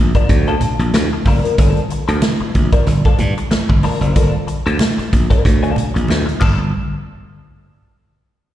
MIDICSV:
0, 0, Header, 1, 6, 480
1, 0, Start_track
1, 0, Key_signature, -2, "minor"
1, 0, Tempo, 643777
1, 1180, Time_signature, 4, 2, 24, 8
1, 6368, End_track
2, 0, Start_track
2, 0, Title_t, "Clean electric guitar"
2, 0, Program_c, 0, 27
2, 113, Note_on_c, 0, 70, 84
2, 116, Note_on_c, 0, 62, 89
2, 124, Note_on_c, 0, 53, 77
2, 124, Note_on_c, 0, 58, 74
2, 213, Note_off_c, 0, 53, 0
2, 215, Note_off_c, 0, 58, 0
2, 216, Note_off_c, 0, 62, 0
2, 220, Note_off_c, 0, 70, 0
2, 355, Note_on_c, 0, 69, 88
2, 356, Note_on_c, 0, 62, 75
2, 359, Note_on_c, 0, 58, 73
2, 361, Note_on_c, 0, 53, 77
2, 455, Note_off_c, 0, 58, 0
2, 456, Note_off_c, 0, 53, 0
2, 457, Note_off_c, 0, 62, 0
2, 461, Note_off_c, 0, 69, 0
2, 942, Note_on_c, 0, 53, 60
2, 946, Note_on_c, 0, 58, 65
2, 952, Note_on_c, 0, 62, 72
2, 953, Note_on_c, 0, 70, 72
2, 1047, Note_off_c, 0, 53, 0
2, 1049, Note_off_c, 0, 58, 0
2, 1052, Note_off_c, 0, 62, 0
2, 1052, Note_off_c, 0, 70, 0
2, 1070, Note_on_c, 0, 70, 67
2, 1072, Note_on_c, 0, 62, 61
2, 1076, Note_on_c, 0, 58, 61
2, 1077, Note_on_c, 0, 53, 54
2, 1156, Note_off_c, 0, 62, 0
2, 1156, Note_off_c, 0, 70, 0
2, 1159, Note_off_c, 0, 53, 0
2, 1159, Note_off_c, 0, 58, 0
2, 1179, Note_on_c, 0, 53, 70
2, 1180, Note_on_c, 0, 58, 80
2, 1183, Note_on_c, 0, 62, 77
2, 1188, Note_on_c, 0, 69, 79
2, 1340, Note_off_c, 0, 53, 0
2, 1340, Note_off_c, 0, 58, 0
2, 1342, Note_off_c, 0, 62, 0
2, 1344, Note_off_c, 0, 69, 0
2, 1549, Note_on_c, 0, 69, 67
2, 1551, Note_on_c, 0, 62, 59
2, 1554, Note_on_c, 0, 58, 59
2, 1557, Note_on_c, 0, 53, 52
2, 1635, Note_off_c, 0, 69, 0
2, 1636, Note_off_c, 0, 62, 0
2, 1637, Note_off_c, 0, 58, 0
2, 1639, Note_off_c, 0, 53, 0
2, 2032, Note_on_c, 0, 70, 88
2, 2033, Note_on_c, 0, 62, 88
2, 2035, Note_on_c, 0, 58, 74
2, 2037, Note_on_c, 0, 53, 84
2, 2134, Note_off_c, 0, 53, 0
2, 2137, Note_off_c, 0, 58, 0
2, 2139, Note_off_c, 0, 70, 0
2, 2140, Note_off_c, 0, 62, 0
2, 2278, Note_on_c, 0, 69, 90
2, 2283, Note_on_c, 0, 62, 73
2, 2286, Note_on_c, 0, 58, 79
2, 2288, Note_on_c, 0, 53, 77
2, 2373, Note_off_c, 0, 53, 0
2, 2375, Note_off_c, 0, 58, 0
2, 2377, Note_off_c, 0, 69, 0
2, 2380, Note_off_c, 0, 62, 0
2, 2857, Note_on_c, 0, 53, 60
2, 2861, Note_on_c, 0, 62, 66
2, 2862, Note_on_c, 0, 58, 63
2, 2865, Note_on_c, 0, 70, 74
2, 2965, Note_off_c, 0, 53, 0
2, 2966, Note_off_c, 0, 62, 0
2, 2967, Note_off_c, 0, 58, 0
2, 2968, Note_off_c, 0, 70, 0
2, 2989, Note_on_c, 0, 70, 71
2, 2992, Note_on_c, 0, 62, 61
2, 2996, Note_on_c, 0, 58, 60
2, 2999, Note_on_c, 0, 53, 64
2, 3075, Note_off_c, 0, 70, 0
2, 3076, Note_off_c, 0, 62, 0
2, 3078, Note_off_c, 0, 58, 0
2, 3080, Note_off_c, 0, 53, 0
2, 3099, Note_on_c, 0, 53, 68
2, 3101, Note_on_c, 0, 58, 82
2, 3105, Note_on_c, 0, 62, 82
2, 3108, Note_on_c, 0, 69, 86
2, 3235, Note_off_c, 0, 53, 0
2, 3236, Note_off_c, 0, 58, 0
2, 3238, Note_off_c, 0, 62, 0
2, 3239, Note_off_c, 0, 69, 0
2, 3473, Note_on_c, 0, 69, 57
2, 3480, Note_on_c, 0, 62, 49
2, 3482, Note_on_c, 0, 53, 46
2, 3482, Note_on_c, 0, 58, 56
2, 3557, Note_off_c, 0, 69, 0
2, 3560, Note_off_c, 0, 62, 0
2, 3562, Note_off_c, 0, 53, 0
2, 3562, Note_off_c, 0, 58, 0
2, 3952, Note_on_c, 0, 70, 87
2, 3956, Note_on_c, 0, 62, 78
2, 3957, Note_on_c, 0, 58, 79
2, 3960, Note_on_c, 0, 53, 63
2, 4040, Note_off_c, 0, 53, 0
2, 4041, Note_off_c, 0, 62, 0
2, 4043, Note_off_c, 0, 58, 0
2, 4051, Note_off_c, 0, 70, 0
2, 4195, Note_on_c, 0, 69, 80
2, 4196, Note_on_c, 0, 62, 88
2, 4198, Note_on_c, 0, 58, 80
2, 4202, Note_on_c, 0, 53, 66
2, 4286, Note_off_c, 0, 53, 0
2, 4289, Note_off_c, 0, 58, 0
2, 4292, Note_off_c, 0, 62, 0
2, 4293, Note_off_c, 0, 69, 0
2, 4770, Note_on_c, 0, 53, 69
2, 4777, Note_on_c, 0, 58, 73
2, 4782, Note_on_c, 0, 62, 80
2, 4783, Note_on_c, 0, 69, 92
2, 4931, Note_off_c, 0, 53, 0
2, 4935, Note_off_c, 0, 58, 0
2, 4937, Note_off_c, 0, 62, 0
2, 4938, Note_off_c, 0, 69, 0
2, 6368, End_track
3, 0, Start_track
3, 0, Title_t, "Slap bass"
3, 0, Program_c, 1, 36
3, 0, Note_on_c, 1, 34, 83
3, 84, Note_off_c, 1, 34, 0
3, 218, Note_on_c, 1, 38, 107
3, 405, Note_off_c, 1, 38, 0
3, 590, Note_on_c, 1, 34, 85
3, 674, Note_off_c, 1, 34, 0
3, 701, Note_on_c, 1, 38, 103
3, 805, Note_off_c, 1, 38, 0
3, 938, Note_on_c, 1, 30, 90
3, 1044, Note_off_c, 1, 30, 0
3, 1179, Note_on_c, 1, 31, 106
3, 1284, Note_off_c, 1, 31, 0
3, 1554, Note_on_c, 1, 38, 99
3, 1636, Note_off_c, 1, 38, 0
3, 1902, Note_on_c, 1, 34, 85
3, 2006, Note_off_c, 1, 34, 0
3, 2139, Note_on_c, 1, 31, 101
3, 2244, Note_off_c, 1, 31, 0
3, 2380, Note_on_c, 1, 43, 99
3, 2485, Note_off_c, 1, 43, 0
3, 2755, Note_on_c, 1, 31, 98
3, 2837, Note_off_c, 1, 31, 0
3, 2989, Note_on_c, 1, 30, 92
3, 3073, Note_off_c, 1, 30, 0
3, 3101, Note_on_c, 1, 31, 111
3, 3205, Note_off_c, 1, 31, 0
3, 3477, Note_on_c, 1, 38, 97
3, 3558, Note_off_c, 1, 38, 0
3, 3824, Note_on_c, 1, 34, 79
3, 3927, Note_off_c, 1, 34, 0
3, 4066, Note_on_c, 1, 38, 95
3, 4250, Note_off_c, 1, 38, 0
3, 4442, Note_on_c, 1, 34, 85
3, 4521, Note_off_c, 1, 34, 0
3, 4549, Note_on_c, 1, 38, 85
3, 4650, Note_off_c, 1, 38, 0
3, 4785, Note_on_c, 1, 31, 87
3, 5006, Note_off_c, 1, 31, 0
3, 6368, End_track
4, 0, Start_track
4, 0, Title_t, "Muted clean electric guitar strokes"
4, 222, Note_on_c, 9, 29, 39
4, 296, Note_off_c, 9, 29, 0
4, 464, Note_on_c, 9, 29, 52
4, 539, Note_off_c, 9, 29, 0
4, 603, Note_on_c, 9, 29, 55
4, 677, Note_off_c, 9, 29, 0
4, 708, Note_on_c, 9, 29, 47
4, 783, Note_off_c, 9, 29, 0
4, 843, Note_on_c, 9, 29, 40
4, 918, Note_off_c, 9, 29, 0
4, 1424, Note_on_c, 9, 29, 44
4, 1499, Note_off_c, 9, 29, 0
4, 1663, Note_on_c, 9, 29, 44
4, 1738, Note_off_c, 9, 29, 0
4, 1794, Note_on_c, 9, 29, 46
4, 1868, Note_off_c, 9, 29, 0
4, 2143, Note_on_c, 9, 29, 40
4, 2218, Note_off_c, 9, 29, 0
4, 2382, Note_on_c, 9, 29, 36
4, 2456, Note_off_c, 9, 29, 0
4, 2519, Note_on_c, 9, 29, 46
4, 2593, Note_off_c, 9, 29, 0
4, 2615, Note_on_c, 9, 29, 51
4, 2689, Note_off_c, 9, 29, 0
4, 2752, Note_on_c, 9, 29, 44
4, 2826, Note_off_c, 9, 29, 0
4, 3334, Note_on_c, 9, 29, 44
4, 3409, Note_off_c, 9, 29, 0
4, 3581, Note_on_c, 9, 29, 33
4, 3656, Note_off_c, 9, 29, 0
4, 3715, Note_on_c, 9, 29, 43
4, 3790, Note_off_c, 9, 29, 0
4, 4049, Note_on_c, 9, 29, 42
4, 4123, Note_off_c, 9, 29, 0
4, 4431, Note_on_c, 9, 29, 56
4, 4506, Note_off_c, 9, 29, 0
4, 4537, Note_on_c, 9, 29, 41
4, 4612, Note_off_c, 9, 29, 0
4, 4666, Note_on_c, 9, 29, 46
4, 4741, Note_off_c, 9, 29, 0
4, 6368, End_track
5, 0, Start_track
5, 0, Title_t, "Muted slap bass strokes"
5, 1797, Note_on_c, 9, 29, 54
5, 1872, Note_off_c, 9, 29, 0
5, 2621, Note_on_c, 9, 29, 43
5, 2695, Note_off_c, 9, 29, 0
5, 3720, Note_on_c, 9, 29, 49
5, 3795, Note_off_c, 9, 29, 0
5, 6368, End_track
6, 0, Start_track
6, 0, Title_t, "Drums"
6, 109, Note_on_c, 9, 42, 47
6, 110, Note_on_c, 9, 36, 88
6, 183, Note_off_c, 9, 42, 0
6, 185, Note_off_c, 9, 36, 0
6, 214, Note_on_c, 9, 38, 34
6, 218, Note_on_c, 9, 36, 103
6, 218, Note_on_c, 9, 42, 74
6, 288, Note_off_c, 9, 38, 0
6, 292, Note_off_c, 9, 42, 0
6, 293, Note_off_c, 9, 36, 0
6, 351, Note_on_c, 9, 42, 32
6, 425, Note_off_c, 9, 42, 0
6, 454, Note_on_c, 9, 62, 33
6, 454, Note_on_c, 9, 64, 79
6, 457, Note_on_c, 9, 42, 84
6, 528, Note_off_c, 9, 62, 0
6, 528, Note_off_c, 9, 64, 0
6, 532, Note_off_c, 9, 42, 0
6, 594, Note_on_c, 9, 42, 44
6, 669, Note_off_c, 9, 42, 0
6, 699, Note_on_c, 9, 63, 83
6, 700, Note_on_c, 9, 38, 107
6, 700, Note_on_c, 9, 42, 92
6, 773, Note_off_c, 9, 63, 0
6, 775, Note_off_c, 9, 38, 0
6, 775, Note_off_c, 9, 42, 0
6, 935, Note_on_c, 9, 63, 76
6, 938, Note_on_c, 9, 36, 94
6, 938, Note_on_c, 9, 46, 81
6, 940, Note_on_c, 9, 38, 39
6, 1010, Note_off_c, 9, 63, 0
6, 1012, Note_off_c, 9, 36, 0
6, 1013, Note_off_c, 9, 46, 0
6, 1014, Note_off_c, 9, 38, 0
6, 1081, Note_on_c, 9, 42, 47
6, 1156, Note_off_c, 9, 42, 0
6, 1178, Note_on_c, 9, 42, 90
6, 1181, Note_on_c, 9, 36, 112
6, 1183, Note_on_c, 9, 62, 53
6, 1253, Note_off_c, 9, 42, 0
6, 1255, Note_off_c, 9, 36, 0
6, 1257, Note_off_c, 9, 62, 0
6, 1316, Note_on_c, 9, 42, 36
6, 1390, Note_off_c, 9, 42, 0
6, 1418, Note_on_c, 9, 42, 69
6, 1492, Note_off_c, 9, 42, 0
6, 1553, Note_on_c, 9, 42, 51
6, 1628, Note_off_c, 9, 42, 0
6, 1653, Note_on_c, 9, 42, 101
6, 1654, Note_on_c, 9, 63, 75
6, 1657, Note_on_c, 9, 38, 120
6, 1727, Note_off_c, 9, 42, 0
6, 1728, Note_off_c, 9, 63, 0
6, 1731, Note_off_c, 9, 38, 0
6, 1898, Note_on_c, 9, 42, 75
6, 1902, Note_on_c, 9, 36, 90
6, 1903, Note_on_c, 9, 62, 52
6, 1973, Note_off_c, 9, 42, 0
6, 1977, Note_off_c, 9, 36, 0
6, 1978, Note_off_c, 9, 62, 0
6, 2030, Note_on_c, 9, 42, 51
6, 2032, Note_on_c, 9, 36, 100
6, 2104, Note_off_c, 9, 42, 0
6, 2106, Note_off_c, 9, 36, 0
6, 2137, Note_on_c, 9, 38, 38
6, 2138, Note_on_c, 9, 64, 72
6, 2141, Note_on_c, 9, 42, 76
6, 2211, Note_off_c, 9, 38, 0
6, 2213, Note_off_c, 9, 64, 0
6, 2215, Note_off_c, 9, 42, 0
6, 2269, Note_on_c, 9, 42, 34
6, 2275, Note_on_c, 9, 36, 87
6, 2344, Note_off_c, 9, 42, 0
6, 2350, Note_off_c, 9, 36, 0
6, 2376, Note_on_c, 9, 62, 33
6, 2376, Note_on_c, 9, 64, 69
6, 2377, Note_on_c, 9, 42, 80
6, 2450, Note_off_c, 9, 62, 0
6, 2450, Note_off_c, 9, 64, 0
6, 2452, Note_off_c, 9, 42, 0
6, 2516, Note_on_c, 9, 42, 45
6, 2591, Note_off_c, 9, 42, 0
6, 2617, Note_on_c, 9, 63, 86
6, 2618, Note_on_c, 9, 38, 100
6, 2618, Note_on_c, 9, 42, 85
6, 2692, Note_off_c, 9, 38, 0
6, 2692, Note_off_c, 9, 42, 0
6, 2692, Note_off_c, 9, 63, 0
6, 2756, Note_on_c, 9, 36, 101
6, 2830, Note_off_c, 9, 36, 0
6, 2856, Note_on_c, 9, 46, 79
6, 2857, Note_on_c, 9, 38, 37
6, 2857, Note_on_c, 9, 63, 70
6, 2930, Note_off_c, 9, 46, 0
6, 2931, Note_off_c, 9, 63, 0
6, 2932, Note_off_c, 9, 38, 0
6, 2997, Note_on_c, 9, 42, 49
6, 3071, Note_off_c, 9, 42, 0
6, 3098, Note_on_c, 9, 42, 80
6, 3102, Note_on_c, 9, 36, 101
6, 3102, Note_on_c, 9, 62, 57
6, 3172, Note_off_c, 9, 42, 0
6, 3176, Note_off_c, 9, 36, 0
6, 3176, Note_off_c, 9, 62, 0
6, 3339, Note_on_c, 9, 42, 68
6, 3413, Note_off_c, 9, 42, 0
6, 3479, Note_on_c, 9, 42, 45
6, 3553, Note_off_c, 9, 42, 0
6, 3574, Note_on_c, 9, 63, 75
6, 3580, Note_on_c, 9, 42, 101
6, 3584, Note_on_c, 9, 38, 119
6, 3648, Note_off_c, 9, 63, 0
6, 3654, Note_off_c, 9, 42, 0
6, 3658, Note_off_c, 9, 38, 0
6, 3720, Note_on_c, 9, 42, 34
6, 3795, Note_off_c, 9, 42, 0
6, 3822, Note_on_c, 9, 42, 74
6, 3824, Note_on_c, 9, 36, 96
6, 3826, Note_on_c, 9, 62, 56
6, 3897, Note_off_c, 9, 42, 0
6, 3899, Note_off_c, 9, 36, 0
6, 3900, Note_off_c, 9, 62, 0
6, 3955, Note_on_c, 9, 36, 89
6, 3956, Note_on_c, 9, 42, 50
6, 4030, Note_off_c, 9, 36, 0
6, 4030, Note_off_c, 9, 42, 0
6, 4063, Note_on_c, 9, 38, 32
6, 4064, Note_on_c, 9, 36, 91
6, 4067, Note_on_c, 9, 42, 73
6, 4138, Note_off_c, 9, 36, 0
6, 4138, Note_off_c, 9, 38, 0
6, 4142, Note_off_c, 9, 42, 0
6, 4202, Note_on_c, 9, 42, 31
6, 4276, Note_off_c, 9, 42, 0
6, 4296, Note_on_c, 9, 64, 73
6, 4307, Note_on_c, 9, 42, 77
6, 4370, Note_off_c, 9, 64, 0
6, 4382, Note_off_c, 9, 42, 0
6, 4444, Note_on_c, 9, 42, 43
6, 4519, Note_off_c, 9, 42, 0
6, 4536, Note_on_c, 9, 63, 77
6, 4548, Note_on_c, 9, 38, 104
6, 4549, Note_on_c, 9, 42, 81
6, 4611, Note_off_c, 9, 63, 0
6, 4623, Note_off_c, 9, 38, 0
6, 4623, Note_off_c, 9, 42, 0
6, 4686, Note_on_c, 9, 42, 39
6, 4760, Note_off_c, 9, 42, 0
6, 4777, Note_on_c, 9, 62, 67
6, 4784, Note_on_c, 9, 36, 105
6, 4787, Note_on_c, 9, 49, 77
6, 4852, Note_off_c, 9, 62, 0
6, 4859, Note_off_c, 9, 36, 0
6, 4862, Note_off_c, 9, 49, 0
6, 6368, End_track
0, 0, End_of_file